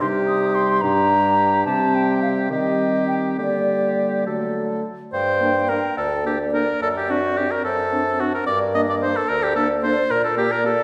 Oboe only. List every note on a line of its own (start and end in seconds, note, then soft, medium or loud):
0.01 0.83 G4 medium
0.83 1.65 G4 medium
1.66 2.47 G4 medium
2.51 3.37 G4 medium
3.39 4.25 G4 soft
4.26 4.84 A4 soft
5.13 5.70 C5 medium
5.69 5.97 A#4 medium
5.97 6.25 A4 medium
6.26 6.39 G4 medium
6.54 6.81 A#4 medium
6.82 6.88 A4 medium
6.97 7.11 G4 medium
7.10 7.38 F#4 medium
7.37 7.53 G4 medium
7.51 7.64 A#4 medium
7.64 8.21 A4 medium
8.20 8.34 F#4 medium
8.34 8.46 A#4 medium
8.47 8.59 D5 medium
8.75 8.81 D#5 medium
8.89 8.95 D5 medium
9.02 9.18 C5 medium
9.16 9.30 A4 medium
9.28 9.45 A#4 medium
9.43 9.55 G4 medium
9.56 9.68 A4 medium
9.83 10.12 C5 medium
10.11 10.23 A#4 medium
10.24 10.37 A4 medium
10.38 10.53 G4 medium
10.52 10.65 A#4 medium
10.65 10.83 A4 medium